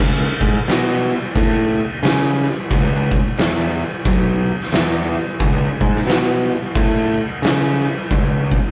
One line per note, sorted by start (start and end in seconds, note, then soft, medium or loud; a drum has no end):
0.00 0.26 C#2 medium
0.00 kick loud
0.00 crash loud
0.00 crash medium
0.41 0.58 G#2 medium
0.41 kick medium
0.68 1.11 B2 medium
0.68 snare loud
0.68 crash medium
1.35 1.79 A2 medium
1.35 kick loud
1.35 crash medium
2.03 2.46 C#3 medium
2.03 snare loud
2.03 crash medium
2.71 3.14 C#2 medium
2.71 kick loud
2.71 crash medium
3.11 kick loud
3.38 3.82 E2 medium
3.38 snare loud
3.38 crash medium
4.05 4.49 B1 medium
4.05 kick loud
4.05 crash medium
4.61 snare soft
4.72 5.16 E2 medium
4.72 snare loud
4.72 crash medium
5.40 5.66 C#2 loud
5.40 kick loud
5.40 crash medium
5.81 5.98 G#2 loud
5.81 kick medium
5.96 snare soft
6.07 6.51 B2 loud
6.07 snare loud
6.07 crash medium
6.75 7.19 A2 medium
6.75 kick loud
6.75 crash medium
7.42 7.86 C#3 medium
7.42 snare loud
7.42 crash medium
8.11 8.55 C#2 loud
8.11 kick loud
8.11 crash medium
8.52 kick medium